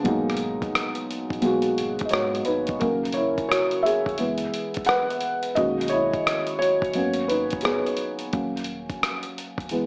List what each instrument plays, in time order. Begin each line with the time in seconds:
0.03 sub bass G#1, felt piano B2 F#3 G#3, kick, closed hi-hat
0.07 felt piano A#3 D#4
0.30 cross-stick, closed hi-hat
0.37 closed hi-hat
0.62 kick, closed hi-hat
0.75 cross-stick, closed hi-hat
0.95 closed hi-hat
1.11 closed hi-hat
1.30 sub bass A#1, kick, closed hi-hat
1.41 felt piano B2 F#3 G#3 A#3, closed hi-hat
1.46 felt piano F#4
1.62 closed hi-hat
1.78 sub bass G#1, closed hi-hat
1.99 sub bass G#1, kick, closed hi-hat
2.06 felt piano D#5, closed hi-hat
2.11 sub bass G#2, felt piano F#4 C#5, cross-stick
2.35 closed hi-hat
2.45 sub bass G#1, felt piano D#4 B4, closed hi-hat
2.67 kick, closed hi-hat
2.80 sub bass D#1, felt piano C#3 F#3 A#3 C#4 A#4, kick, closed hi-hat
3.05 closed hi-hat
3.12 felt piano C#5, closed hi-hat
3.17 felt piano E4
3.38 kick, closed hi-hat
3.49 felt piano F#4 C#5, cross-stick, closed hi-hat
3.71 closed hi-hat
3.83 felt piano G#4 E5, closed hi-hat
4.06 sub bass E1, kick, closed hi-hat
4.18 sub bass F#1, felt piano E3 G#3 B3, closed hi-hat
4.38 closed hi-hat
4.54 closed hi-hat
4.74 kick, closed hi-hat
4.85 felt piano F#5, closed hi-hat
4.89 felt piano B4, cross-stick
5.10 closed hi-hat
5.21 closed hi-hat
5.43 closed hi-hat
5.55 sub bass B1, felt piano D#3 G#3 A#3 C#4 F#4 D#5, kick, closed hi-hat
5.81 closed hi-hat
5.88 felt piano C#5, closed hi-hat
5.92 felt piano E4
6.14 kick, closed hi-hat
6.27 cross-stick, closed hi-hat
6.47 closed hi-hat
6.59 felt piano F#4 C#5, closed hi-hat
6.82 sub bass F#1, kick, closed hi-hat
6.93 sub bass G#1, felt piano F#3 A#3 B3 C#4, closed hi-hat
7.14 closed hi-hat
7.28 felt piano D#4 B4, closed hi-hat
7.50 sub bass F#1, kick, closed hi-hat
7.61 felt piano G#4, closed hi-hat
7.65 felt piano B3, cross-stick
7.87 closed hi-hat
7.97 closed hi-hat
8.19 closed hi-hat
8.33 sub bass D#1, felt piano F#3 A#3 C#4, kick, closed hi-hat
8.57 closed hi-hat
8.64 closed hi-hat
8.90 kick, closed hi-hat
9.03 cross-stick, closed hi-hat
9.23 closed hi-hat
9.38 closed hi-hat
9.58 sub bass E1, kick, closed hi-hat
9.69 sub bass F#1, felt piano E3 G#3 B3, closed hi-hat